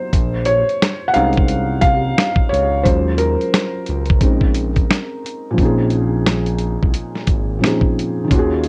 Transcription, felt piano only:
0.00 0.14 F#3 medium
0.00 0.15 B3 soft
0.00 0.15 D#4 soft
0.00 0.14 E4 medium
0.00 0.42 C5 loud
0.46 1.11 C#5 loud
1.08 1.14 F#5 medium
1.14 2.13 G#3 medium
1.14 2.13 C4 medium
1.14 2.14 C#4 medium
1.14 2.14 D#4 medium
1.14 1.79 F5 loud
1.81 2.52 F5 loud
2.49 2.82 C#5 loud
2.83 3.83 F#3 medium
2.83 3.83 G#3 soft
2.83 3.84 C#4 medium
2.83 3.83 F4 medium
2.83 3.20 C5 medium
3.18 5.19 A#4 medium
4.21 4.69 G#3 medium
4.21 4.69 C4 soft
4.21 4.70 C#4 soft
4.21 4.70 D#4 medium
5.50 7.55 A#2 medium
5.50 7.56 F3 medium
5.57 7.58 C4 medium
5.57 7.59 C#4 medium
5.62 7.61 D#4 medium
5.62 7.62 G#4 medium
7.59 8.29 A#2 medium
7.59 8.30 F3 medium
7.59 8.31 C4 medium
7.64 8.26 C#4 medium
7.64 8.32 D#4 medium
7.64 8.33 G#4 medium
8.24 8.68 D#3 medium
8.24 8.68 C#4 medium
8.31 8.68 F4 medium
8.31 8.68 F#4 medium
8.39 8.68 G#4 medium

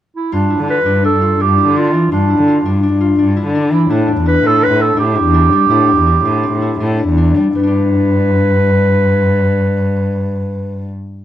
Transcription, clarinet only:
0.16 0.35 E4 medium
0.33 0.69 D4 medium
0.70 1.02 B4 medium
1.05 1.43 A4 medium
1.41 1.77 G4 medium
1.77 2.10 F4 medium
2.12 2.79 D4 medium
3.73 3.92 E4 medium
3.90 4.26 D4 medium
4.27 4.48 B4 medium
4.46 4.65 A4 medium
4.63 4.82 B4 medium
4.81 4.99 A4 medium
4.99 7.14 G4 medium
7.56 10.88 B4 medium

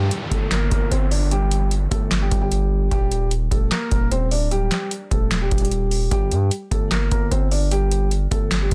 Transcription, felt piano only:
0.31 0.48 A3 medium
0.31 0.47 A4 medium
0.52 0.68 A#3 medium
0.52 0.67 A#4 medium
0.72 0.88 A#3 medium
0.72 0.87 A#4 medium
0.91 1.08 C4 medium
0.91 1.07 C5 medium
1.11 1.28 D4 medium
1.11 1.27 D5 medium
1.31 1.69 G3 medium
1.31 1.69 G4 loud
1.91 2.20 A3 medium
1.91 2.20 A4 medium
2.21 2.38 G3 medium
2.21 2.37 G4 medium
2.41 2.89 G3 medium
2.41 2.88 G4 medium
2.91 3.29 G3 medium
2.91 3.29 G4 loud
3.52 3.68 A3 medium
3.52 3.67 A4 medium
3.72 3.88 A#3 medium
3.72 3.87 A#4 medium
3.91 4.08 A#3 medium
3.91 4.07 A#4 medium
4.11 4.28 C4 medium
4.11 4.27 C5 medium
4.31 4.48 D4 medium
4.31 4.47 D5 medium
4.51 4.89 G3 medium
4.51 4.89 G4 loud
5.12 5.40 A3 medium
5.12 5.40 A4 medium
5.41 5.58 G3 medium
5.41 5.57 G4 medium
5.61 6.09 G3 medium
5.61 6.08 G4 medium
6.12 6.50 G3 medium
6.12 6.49 G4 loud
6.71 6.88 A3 medium
6.71 6.87 A4 medium
6.91 7.08 A#3 medium
6.91 7.07 A#4 medium
7.11 7.28 A#3 medium
7.11 7.27 A#4 medium
7.31 7.48 C4 medium
7.31 7.47 C5 medium
7.52 7.68 D4 medium
7.52 7.67 D5 medium
7.71 8.09 G3 medium
7.71 8.09 G4 loud
8.31 8.60 A3 medium
8.31 8.60 A4 medium
8.61 8.74 G3 medium
8.61 8.74 G4 medium

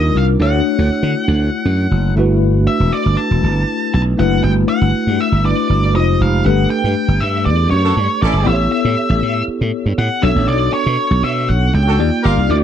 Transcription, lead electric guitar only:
0.00 0.18 D#5 medium
0.17 0.24 F5 medium
0.42 2.14 F#5 medium
2.67 2.94 E5 medium
2.92 3.19 D5 medium
3.17 3.93 A5 loud
3.94 4.01 A5 loud
4.19 4.43 F#5 medium
4.44 4.51 G5 loud
4.69 5.21 F#5 medium
5.21 5.45 E5 medium
5.46 5.92 D5 medium
5.96 6.21 D#5 medium
6.22 6.46 F5 medium
6.46 6.70 F#5 loud
6.70 7.22 G5 loud
7.21 7.45 E5 medium
7.45 7.70 D5 loud
7.71 8.22 C#5 medium
8.22 8.47 D5 medium
8.47 8.71 E5 medium
8.72 9.44 E5 medium
9.99 10.24 F#5 medium
10.23 10.47 E5 medium
10.48 10.73 D5 loud
10.73 11.24 C#5 medium
11.24 11.50 E5 medium
11.49 11.74 F#5 loud
11.75 12.25 G5 loud
12.26 12.51 F5 medium
12.51 12.56 D5 loud

